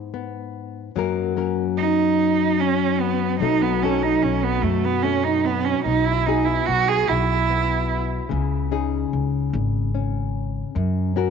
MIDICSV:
0, 0, Header, 1, 4, 480
1, 0, Start_track
1, 0, Key_signature, 5, "major"
1, 0, Tempo, 817439
1, 557, Time_signature, 6, 3, 24, 8
1, 6636, End_track
2, 0, Start_track
2, 0, Title_t, "Cello"
2, 0, Program_c, 0, 42
2, 1039, Note_on_c, 0, 63, 72
2, 1525, Note_on_c, 0, 61, 64
2, 1534, Note_off_c, 0, 63, 0
2, 1758, Note_on_c, 0, 59, 56
2, 1767, Note_off_c, 0, 61, 0
2, 1992, Note_off_c, 0, 59, 0
2, 1995, Note_on_c, 0, 63, 71
2, 2123, Note_on_c, 0, 59, 66
2, 2132, Note_off_c, 0, 63, 0
2, 2246, Note_on_c, 0, 61, 62
2, 2255, Note_off_c, 0, 59, 0
2, 2361, Note_on_c, 0, 63, 67
2, 2370, Note_off_c, 0, 61, 0
2, 2480, Note_on_c, 0, 61, 60
2, 2488, Note_off_c, 0, 63, 0
2, 2601, Note_on_c, 0, 59, 68
2, 2610, Note_off_c, 0, 61, 0
2, 2713, Note_on_c, 0, 57, 63
2, 2722, Note_off_c, 0, 59, 0
2, 2845, Note_on_c, 0, 59, 67
2, 2854, Note_off_c, 0, 57, 0
2, 2951, Note_on_c, 0, 61, 73
2, 2960, Note_off_c, 0, 59, 0
2, 3073, Note_on_c, 0, 63, 64
2, 3082, Note_off_c, 0, 61, 0
2, 3197, Note_on_c, 0, 59, 65
2, 3205, Note_off_c, 0, 63, 0
2, 3315, Note_on_c, 0, 61, 69
2, 3323, Note_off_c, 0, 59, 0
2, 3428, Note_off_c, 0, 61, 0
2, 3431, Note_on_c, 0, 63, 75
2, 3559, Note_on_c, 0, 64, 77
2, 3567, Note_off_c, 0, 63, 0
2, 3673, Note_on_c, 0, 63, 68
2, 3682, Note_off_c, 0, 64, 0
2, 3786, Note_on_c, 0, 64, 69
2, 3794, Note_off_c, 0, 63, 0
2, 3909, Note_on_c, 0, 66, 81
2, 3918, Note_off_c, 0, 64, 0
2, 4039, Note_on_c, 0, 68, 85
2, 4048, Note_off_c, 0, 66, 0
2, 4159, Note_on_c, 0, 64, 71
2, 4168, Note_off_c, 0, 68, 0
2, 4698, Note_off_c, 0, 64, 0
2, 6636, End_track
3, 0, Start_track
3, 0, Title_t, "Nylon-string guitar"
3, 0, Program_c, 1, 24
3, 0, Note_on_c, 1, 44, 60
3, 0, Note_on_c, 1, 59, 46
3, 0, Note_on_c, 1, 64, 44
3, 0, Note_on_c, 1, 68, 45
3, 74, Note_off_c, 1, 59, 0
3, 81, Note_on_c, 1, 59, 43
3, 525, Note_off_c, 1, 44, 0
3, 530, Note_off_c, 1, 59, 0
3, 531, Note_off_c, 1, 64, 0
3, 533, Note_off_c, 1, 68, 0
3, 561, Note_on_c, 1, 42, 58
3, 563, Note_on_c, 1, 54, 45
3, 571, Note_on_c, 1, 58, 46
3, 575, Note_on_c, 1, 61, 45
3, 579, Note_on_c, 1, 70, 54
3, 796, Note_off_c, 1, 58, 0
3, 799, Note_off_c, 1, 61, 0
3, 802, Note_off_c, 1, 70, 0
3, 803, Note_on_c, 1, 58, 42
3, 806, Note_on_c, 1, 61, 41
3, 809, Note_on_c, 1, 70, 45
3, 1521, Note_off_c, 1, 58, 0
3, 1977, Note_off_c, 1, 70, 0
3, 1997, Note_on_c, 1, 47, 56
3, 1999, Note_off_c, 1, 54, 0
3, 2001, Note_on_c, 1, 54, 45
3, 2002, Note_off_c, 1, 42, 0
3, 2004, Note_off_c, 1, 61, 0
3, 2005, Note_on_c, 1, 57, 45
3, 2009, Note_on_c, 1, 63, 45
3, 2014, Note_on_c, 1, 69, 50
3, 2243, Note_off_c, 1, 57, 0
3, 2246, Note_off_c, 1, 63, 0
3, 2246, Note_off_c, 1, 69, 0
3, 2251, Note_on_c, 1, 57, 45
3, 2253, Note_on_c, 1, 63, 40
3, 2261, Note_on_c, 1, 69, 49
3, 2955, Note_off_c, 1, 57, 0
3, 2962, Note_on_c, 1, 57, 39
3, 3413, Note_off_c, 1, 54, 0
3, 3419, Note_off_c, 1, 63, 0
3, 3422, Note_off_c, 1, 69, 0
3, 3431, Note_off_c, 1, 47, 0
3, 3438, Note_on_c, 1, 47, 57
3, 3441, Note_off_c, 1, 57, 0
3, 3679, Note_on_c, 1, 59, 44
3, 3689, Note_on_c, 1, 66, 42
3, 3691, Note_on_c, 1, 68, 50
3, 4398, Note_off_c, 1, 59, 0
3, 4404, Note_on_c, 1, 59, 40
3, 4847, Note_off_c, 1, 47, 0
3, 4852, Note_off_c, 1, 59, 0
3, 4853, Note_off_c, 1, 66, 0
3, 4869, Note_on_c, 1, 49, 58
3, 5117, Note_on_c, 1, 61, 44
3, 5119, Note_off_c, 1, 68, 0
3, 5120, Note_on_c, 1, 63, 40
3, 5121, Note_on_c, 1, 68, 49
3, 5838, Note_off_c, 1, 61, 0
3, 5840, Note_on_c, 1, 61, 41
3, 6280, Note_off_c, 1, 49, 0
3, 6286, Note_off_c, 1, 63, 0
3, 6313, Note_on_c, 1, 42, 59
3, 6331, Note_off_c, 1, 68, 0
3, 6551, Note_off_c, 1, 61, 0
3, 6553, Note_on_c, 1, 61, 46
3, 6558, Note_on_c, 1, 66, 42
3, 6563, Note_on_c, 1, 70, 50
3, 6636, Note_off_c, 1, 42, 0
3, 6636, Note_off_c, 1, 61, 0
3, 6636, Note_off_c, 1, 66, 0
3, 6636, Note_off_c, 1, 70, 0
3, 6636, End_track
4, 0, Start_track
4, 0, Title_t, "Upright bass"
4, 0, Program_c, 2, 32
4, 1997, Note_on_c, 2, 35, 66
4, 2424, Note_off_c, 2, 35, 0
4, 2482, Note_on_c, 2, 35, 62
4, 2694, Note_off_c, 2, 35, 0
4, 2717, Note_on_c, 2, 42, 68
4, 3356, Note_off_c, 2, 42, 0
4, 3436, Note_on_c, 2, 35, 63
4, 3862, Note_off_c, 2, 35, 0
4, 3923, Note_on_c, 2, 35, 67
4, 4134, Note_off_c, 2, 35, 0
4, 4168, Note_on_c, 2, 35, 73
4, 4800, Note_off_c, 2, 35, 0
4, 4880, Note_on_c, 2, 37, 72
4, 5303, Note_off_c, 2, 37, 0
4, 5362, Note_on_c, 2, 37, 62
4, 5571, Note_off_c, 2, 37, 0
4, 5598, Note_on_c, 2, 32, 79
4, 6233, Note_off_c, 2, 32, 0
4, 6316, Note_on_c, 2, 42, 74
4, 6636, Note_off_c, 2, 42, 0
4, 6636, End_track
0, 0, End_of_file